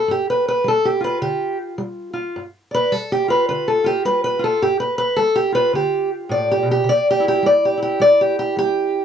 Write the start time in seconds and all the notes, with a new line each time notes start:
Already playing: A4
0.08 G2 G4
0.30 B4
0.48 B4
0.64 G3 A4
0.85 G4
1.01 F4 B4
1.22 D3 G4
1.78 G3
2.13 F4
2.36 G2
2.71 B4 D5
2.92 G3 A4
3.12 G4
3.28 F4 B4
3.49 D3 B4
3.68 A4
3.84 F4 G4
4.05 G3 B4
4.24 B4
4.39 F4
4.44 A4
4.62 G2 G4
4.80 B4
4.98 B4
5.16 G3 A4
5.36 G4
5.52 F4 B4
5.73 D3 G4
6.29 A2 D5
6.51 G4
6.63 B2
6.71 G4
6.84 C3
6.89 D5
7.11 G4
7.20 E4
7.28 G4
7.43 G3 D5
7.65 G4
7.78 E4
7.82 G4
8.00 G3 D5
8.21 G4
8.39 G4
8.57 G3 G4